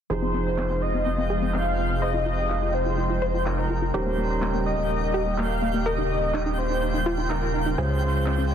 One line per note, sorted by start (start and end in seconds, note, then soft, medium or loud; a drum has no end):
0.10 3.92 F1 medium
0.10 3.90 C3 medium
0.10 3.91 F3 medium
0.10 3.90 F3 medium
0.10 3.90 G#3 medium
0.10 3.91 C4 medium
0.10 3.91 D#4 medium
0.10 5.82 D#4 medium
0.10 3.90 F4 medium
0.10 0.17 G#4 medium
0.10 3.91 G#4 medium
0.10 0.84 C5 loud
0.10 8.55 G5 medium
0.22 0.29 C4 medium
0.34 0.41 C4 medium
0.58 0.65 C4 medium
0.58 clap loud
0.70 0.77 C4 medium
0.82 1.56 D#5 loud
0.94 1.01 C4 medium
1.06 1.13 C4 medium
1.18 1.25 C4 medium
1.30 1.37 G#4 medium
1.42 1.49 C4 medium
1.54 1.61 C4 medium
1.54 2.01 F5 loud
1.54 clap loud
1.78 1.85 C4 medium
1.90 1.97 C4 medium
2.02 2.09 C5 medium
2.02 2.75 D#5 loud
2.14 2.21 F4 medium
2.26 2.33 F4 medium
2.50 2.57 F4 medium
2.50 clap loud
2.62 2.69 F4 medium
2.74 3.47 C5 loud
2.86 2.93 F4 medium
2.98 3.05 F4 medium
3.10 3.17 F4 medium
3.22 3.29 C5 medium
3.34 3.41 F4 medium
3.46 3.53 F4 medium
3.46 3.93 A#4 loud
3.46 clap loud
3.58 clap soft
3.70 3.77 F4 medium
3.82 3.89 F4 medium
3.94 7.76 D#1 medium
3.94 8.55 C#3 medium
3.94 7.74 G3 medium
3.94 7.75 G3 medium
3.94 7.74 A#3 medium
3.94 7.75 C#4 medium
3.94 7.75 D#4 medium
3.94 7.74 G4 medium
3.94 4.01 G4 medium
3.94 7.75 A#4 medium
3.94 4.62 C5 loud
4.06 4.13 A#3 medium
4.18 4.25 A#3 medium
4.42 4.49 A#3 medium
4.42 clap loud
4.54 4.61 A#3 medium
4.66 5.40 D#5 loud
4.78 4.85 A#3 medium
4.90 4.97 A#3 medium
5.02 5.09 A#3 medium
5.14 5.21 G4 medium
5.26 5.33 A#3 medium
5.38 5.45 A#3 medium
5.38 5.86 F5 loud
5.38 clap loud
5.62 5.69 A#3 medium
5.74 5.81 A#3 medium
5.86 8.55 F4 medium
5.86 5.93 A#4 loud
5.86 6.59 D#5 loud
5.98 6.05 D#4 medium
6.10 6.17 D#4 medium
6.34 6.41 D#4 medium
6.34 clap loud
6.46 6.53 D#4 medium
6.58 7.29 C5 loud
6.70 6.77 D#4 medium
6.82 6.89 D#4 medium
6.94 7.01 D#4 medium
7.06 7.13 F4 medium
7.18 7.25 D#4 medium
7.30 7.37 D#4 medium
7.30 7.75 A#4 medium
7.30 clap loud
7.42 clap soft
7.54 7.61 D#4 medium
7.66 7.73 D#4 medium
7.78 8.55 C#2 medium
7.78 8.55 C#3 medium
7.78 8.55 F3 medium
7.78 8.55 G#3 medium
7.78 8.55 C#4 medium
7.78 8.55 F4 medium
7.78 7.85 G#4 medium
7.78 8.55 G#4 medium
7.78 8.51 C5 loud
7.78 8.55 C5 medium
7.90 7.97 C#4 medium
8.02 8.09 C#4 medium
8.26 8.33 C#4 medium
8.26 clap loud
8.38 8.45 C#4 medium
8.50 8.55 D#5 loud